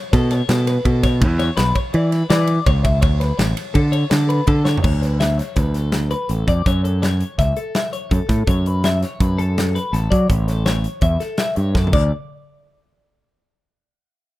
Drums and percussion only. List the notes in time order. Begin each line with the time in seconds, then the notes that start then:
0.13 kick, snare, ride
0.31 snare, ride
0.49 snare, ride
0.67 snare, ride
0.85 kick, ride
1.03 kick, snare, ride
1.22 kick, ride
1.39 snare, ride
1.57 snare, ride
1.75 kick, ride
1.94 ride
2.12 snare, ride
2.30 snare, ride
2.47 ride
2.66 kick, ride
2.85 kick, ride
3.02 kick, ride
3.21 snare, ride
3.39 snare, ride
3.57 snare, ride
3.75 kick, ride
3.93 ride
4.11 snare, ride
4.30 ride
4.47 kick, ride
4.65 snare
4.77 floor tom
4.84 kick, crash
5.03 snare, closed hi-hat
5.20 snare, closed hi-hat
5.39 snare, closed hi-hat
5.56 kick, snare, closed hi-hat
5.74 snare, closed hi-hat
5.92 snare, closed hi-hat
6.11 closed hi-hat
6.29 closed hi-hat
6.48 kick, closed hi-hat
6.66 kick, closed hi-hat
6.85 closed hi-hat
7.03 snare, closed hi-hat
7.20 closed hi-hat
7.39 kick, snare, closed hi-hat
7.56 closed hi-hat
7.75 snare, closed hi-hat
7.93 closed hi-hat
8.11 kick, closed hi-hat
8.29 kick, snare, closed hi-hat
8.47 kick, closed hi-hat
8.66 closed hi-hat
8.84 snare, closed hi-hat
9.02 snare, closed hi-hat
9.20 kick, closed hi-hat
9.39 closed hi-hat
9.58 snare, closed hi-hat
9.76 closed hi-hat
9.94 snare, closed hi-hat
10.12 kick, closed hi-hat
10.30 kick, closed hi-hat
10.48 snare, closed hi-hat
10.66 snare, closed hi-hat
10.84 closed hi-hat
11.01 kick, closed hi-hat
11.20 snare, closed hi-hat
11.38 snare, closed hi-hat
11.56 closed hi-hat
11.75 kick, snare
11.87 mid tom
11.93 kick, crash